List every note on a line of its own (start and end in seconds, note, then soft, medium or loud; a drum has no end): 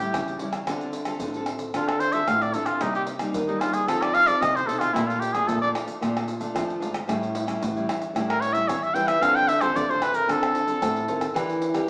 0.00 0.12 A2 medium
0.00 0.36 G3 medium
0.00 0.36 C#4 medium
0.00 0.36 E4 medium
0.00 0.40 G4 medium
0.14 0.60 C#3 medium
0.14 0.65 E3 medium
0.14 pandeiro medium
0.14 tamborim medium
0.14 shaker medium
0.14 surdo loud
0.28 pandeiro soft
0.28 shaker soft
0.28 surdo soft
0.39 0.64 G3 medium
0.39 0.64 C#4 medium
0.39 0.64 E4 medium
0.39 pandeiro medium
0.53 pandeiro medium
0.53 tamborim medium
0.53 shaker medium
0.67 1.19 D3 medium
0.67 0.93 C4 medium
0.67 0.93 F4 medium
0.67 0.94 A4 medium
0.67 pandeiro medium
0.67 tamborim medium
0.67 shaker medium
0.67 surdo medium
0.81 pandeiro soft
0.81 shaker soft
0.93 pandeiro medium
0.93 shaker medium
1.05 1.30 C4 medium
1.05 1.30 F4 medium
1.05 1.30 A4 medium
1.05 pandeiro medium
1.05 tamborim medium
1.05 shaker medium
1.05 surdo soft
1.20 1.72 A2 medium
1.20 1.44 D3 medium
1.20 pandeiro medium
1.20 shaker medium
1.20 surdo medium
1.34 1.71 C4 medium
1.34 1.71 F4 medium
1.34 1.71 A4 medium
1.34 pandeiro soft
1.34 shaker soft
1.46 pandeiro medium
1.46 tamborim medium
1.59 pandeiro medium
1.59 shaker medium
1.59 surdo soft
1.74 2.26 D3 medium
1.74 2.00 C4 medium
1.74 2.00 F4 medium
1.74 1.90 F4 medium
1.74 2.00 A4 medium
1.74 pandeiro medium
1.74 tamborim medium
1.74 shaker medium
1.74 surdo medium
1.88 2.01 A4 medium
1.88 pandeiro soft
1.88 tamborim medium
1.88 shaker soft
2.00 2.14 C5 medium
2.00 pandeiro medium
2.00 shaker medium
2.12 2.50 C4 medium
2.12 2.50 F4 medium
2.12 2.50 A4 medium
2.12 2.29 E5 medium
2.12 pandeiro soft
2.12 shaker medium
2.12 surdo soft
2.28 2.79 A2 medium
2.28 2.44 F5 medium
2.28 pandeiro medium
2.28 tamborim medium
2.28 shaker medium
2.28 surdo medium
2.42 2.55 D5 medium
2.42 pandeiro soft
2.42 shaker soft
2.42 surdo soft
2.54 2.77 D3 medium
2.54 2.77 C4 medium
2.54 2.77 F4 medium
2.54 2.67 A4 medium
2.54 2.77 A4 medium
2.54 pandeiro medium
2.54 shaker medium
2.66 2.83 F4 medium
2.66 pandeiro medium
2.66 tamborim medium
2.66 shaker medium
2.81 3.32 C3 medium
2.81 3.07 G3 medium
2.81 3.07 A#3 medium
2.81 2.95 D#4 medium
2.81 3.07 D#4 medium
2.81 pandeiro medium
2.81 tamborim medium
2.81 shaker medium
2.81 surdo medium
2.95 3.03 G4 medium
2.95 pandeiro soft
2.95 shaker soft
3.07 pandeiro medium
3.07 shaker medium
3.19 3.43 G3 medium
3.19 3.43 A#3 medium
3.19 3.43 D#4 medium
3.19 pandeiro medium
3.19 tamborim medium
3.19 shaker medium
3.19 surdo soft
3.34 3.85 G2 medium
3.34 3.57 D#3 medium
3.34 pandeiro medium
3.34 shaker medium
3.34 surdo loud
3.47 3.84 G3 medium
3.47 3.84 A#3 medium
3.47 3.62 D#4 medium
3.47 3.84 D#4 medium
3.47 pandeiro soft
3.47 shaker soft
3.60 3.75 F4 loud
3.60 pandeiro medium
3.60 tamborim medium
3.60 shaker medium
3.73 3.89 G#4 medium
3.73 pandeiro medium
3.73 shaker medium
3.73 surdo soft
3.88 4.39 F3 medium
3.88 4.24 C4 medium
3.88 4.24 D#4 soft
3.88 4.04 A4 medium
3.88 4.24 A4 medium
3.88 pandeiro medium
3.88 tamborim medium
3.88 shaker medium
3.88 surdo medium
4.02 4.16 D5 medium
4.02 pandeiro soft
4.02 tamborim medium
4.02 shaker soft
4.14 4.29 F5 loud
4.14 pandeiro medium
4.26 4.63 C4 medium
4.26 4.63 D#4 medium
4.26 4.63 A4 medium
4.26 4.43 D5 medium
4.26 pandeiro medium
4.26 shaker medium
4.26 surdo soft
4.41 4.92 C3 medium
4.41 4.57 D#5 medium
4.41 pandeiro medium
4.41 tamborim medium
4.41 shaker medium
4.41 surdo loud
4.56 4.68 C5 medium
4.56 pandeiro soft
4.56 shaker soft
4.56 surdo soft
4.67 4.90 B2 medium
4.67 4.90 C4 medium
4.67 4.90 D#4 medium
4.67 4.81 A4 medium
4.67 4.90 A4 medium
4.67 pandeiro medium
4.79 4.95 F4 medium
4.79 pandeiro medium
4.79 tamborim medium
4.79 shaker medium
4.93 5.45 A#2 medium
4.93 5.30 A3 medium
4.93 5.31 D4 medium
4.93 5.09 E4 medium
4.93 5.31 F4 medium
4.93 pandeiro medium
4.93 tamborim medium
4.93 shaker medium
4.93 surdo medium
5.08 5.21 F4 medium
5.08 pandeiro soft
5.08 shaker soft
5.20 5.34 G4 medium
5.20 pandeiro medium
5.20 shaker medium
5.33 5.57 A3 medium
5.33 5.57 D4 medium
5.33 5.57 F4 medium
5.33 5.49 G#4 medium
5.33 pandeiro medium
5.33 tamborim medium
5.33 shaker medium
5.33 surdo soft
5.47 5.71 A#2 medium
5.47 5.99 F3 medium
5.47 5.61 A4 medium
5.47 pandeiro medium
5.47 shaker medium
5.47 surdo medium
5.62 5.98 A3 medium
5.62 5.98 D4 medium
5.62 5.98 F4 medium
5.62 5.70 D5 medium
5.62 pandeiro soft
5.62 shaker soft
5.75 pandeiro medium
5.75 tamborim medium
5.88 pandeiro medium
5.88 shaker medium
5.88 surdo soft
6.01 6.52 A#2 medium
6.01 6.27 A3 medium
6.01 6.27 D4 medium
6.01 6.27 F4 medium
6.01 pandeiro medium
6.01 tamborim medium
6.01 shaker medium
6.01 surdo medium
6.17 pandeiro soft
6.17 tamborim medium
6.17 shaker soft
6.28 pandeiro medium
6.28 shaker medium
6.40 6.77 A3 medium
6.40 6.77 D4 medium
6.40 6.77 F4 medium
6.40 pandeiro medium
6.40 shaker medium
6.40 surdo soft
6.56 7.06 F3 medium
6.56 pandeiro medium
6.56 tamborim medium
6.56 shaker medium
6.56 surdo loud
6.70 pandeiro soft
6.70 shaker soft
6.70 surdo soft
6.80 7.04 G#2 medium
6.80 6.97 A3 medium
6.80 6.97 D4 medium
6.80 6.97 F4 medium
6.80 pandeiro medium
6.80 shaker medium
6.80 surdo soft
6.94 pandeiro medium
6.94 tamborim medium
6.94 shaker medium
7.07 7.59 A2 medium
7.07 7.44 G3 medium
7.07 7.44 C#4 medium
7.07 7.44 E4 medium
7.07 pandeiro medium
7.07 tamborim medium
7.07 shaker medium
7.07 surdo medium
7.23 pandeiro soft
7.23 shaker soft
7.35 pandeiro medium
7.46 7.70 G3 medium
7.46 7.70 C#4 medium
7.46 7.70 E4 medium
7.46 pandeiro medium
7.46 tamborim medium
7.46 shaker medium
7.46 surdo soft
7.61 7.84 A2 medium
7.61 8.13 E3 medium
7.61 pandeiro medium
7.61 shaker medium
7.61 surdo loud
7.76 8.11 G3 medium
7.76 8.12 C#4 medium
7.76 8.12 E4 medium
7.76 pandeiro soft
7.76 shaker soft
7.89 pandeiro medium
7.89 tamborim medium
8.02 pandeiro medium
8.02 shaker medium
8.02 surdo soft
8.15 8.66 A2 medium
8.15 8.51 G3 medium
8.15 8.51 C#4 medium
8.15 8.51 E4 medium
8.15 pandeiro medium
8.15 tamborim medium
8.15 shaker medium
8.15 surdo medium
8.30 8.42 A#4 medium
8.30 pandeiro soft
8.30 tamborim medium
8.30 shaker soft
8.41 8.55 C#5 loud
8.41 pandeiro medium
8.53 8.90 G3 medium
8.53 8.91 C#4 medium
8.53 8.91 E4 medium
8.53 8.70 E5 medium
8.53 pandeiro medium
8.53 shaker medium
8.53 surdo soft
8.68 9.19 E3 medium
8.68 8.92 G3 medium
8.68 8.85 C#5 medium
8.68 pandeiro medium
8.68 tamborim medium
8.68 shaker medium
8.68 surdo medium
8.83 8.96 E5 medium
8.83 pandeiro soft
8.83 shaker soft
8.83 surdo soft
8.94 9.19 E3 medium
8.94 9.17 G3 medium
8.94 9.17 C#4 medium
8.94 9.18 E4 medium
8.94 9.09 G5 medium
8.94 pandeiro medium
8.94 surdo soft
9.08 9.24 E5 loud
9.08 pandeiro medium
9.08 tamborim medium
9.08 shaker medium
9.22 9.73 D3 medium
9.22 9.48 C4 medium
9.22 9.48 F4 medium
9.22 9.48 A4 medium
9.22 9.37 F5 medium
9.22 pandeiro medium
9.22 tamborim medium
9.22 shaker medium
9.22 surdo medium
9.35 9.50 G5 loud
9.35 pandeiro soft
9.35 shaker soft
9.48 9.63 E5 loud
9.48 pandeiro medium
9.61 9.84 C4 medium
9.61 9.84 F4 medium
9.61 9.85 A4 medium
9.61 9.78 C5 medium
9.61 pandeiro medium
9.61 tamborim medium
9.61 shaker medium
9.61 surdo soft
9.75 10.26 A2 medium
9.75 9.98 D3 medium
9.75 9.92 D5 loud
9.75 pandeiro medium
9.75 shaker medium
9.75 surdo loud
9.89 10.25 C4 medium
9.89 10.25 F4 medium
9.89 10.25 A4 medium
9.89 10.04 C5 medium
9.89 pandeiro soft
9.89 shaker soft
10.02 10.17 B4 loud
10.02 pandeiro medium
10.02 tamborim medium
10.14 10.32 A#4 medium
10.14 pandeiro medium
10.14 shaker medium
10.14 surdo soft
10.29 10.80 D3 medium
10.29 10.65 C4 medium
10.29 10.65 F4 medium
10.29 10.65 A4 medium
10.29 11.37 A4 medium
10.29 pandeiro medium
10.29 tamborim medium
10.29 shaker medium
10.29 surdo medium
10.43 pandeiro soft
10.43 tamborim loud
10.43 shaker soft
10.55 pandeiro medium
10.67 11.04 C4 medium
10.67 11.04 F4 medium
10.67 11.04 A4 medium
10.67 pandeiro medium
10.67 shaker medium
10.67 surdo soft
10.82 11.33 A2 medium
10.82 pandeiro medium
10.82 tamborim medium
10.82 shaker medium
10.82 surdo loud
10.96 pandeiro soft
10.96 shaker soft
10.96 surdo soft
11.08 11.31 D#3 medium
11.08 11.24 C4 medium
11.08 11.25 F4 medium
11.08 11.25 A4 medium
11.08 pandeiro medium
11.21 pandeiro medium
11.21 tamborim medium
11.21 shaker medium
11.35 11.86 E3 medium
11.35 11.71 D4 medium
11.35 11.72 G4 medium
11.35 11.72 A#4 medium
11.35 pandeiro medium
11.35 tamborim medium
11.35 shaker medium
11.35 surdo medium
11.49 pandeiro soft
11.49 shaker soft
11.62 pandeiro medium
11.74 11.90 D4 medium
11.74 11.90 G4 medium
11.74 11.90 A#4 medium
11.74 pandeiro medium
11.74 tamborim medium
11.74 shaker medium
11.74 surdo soft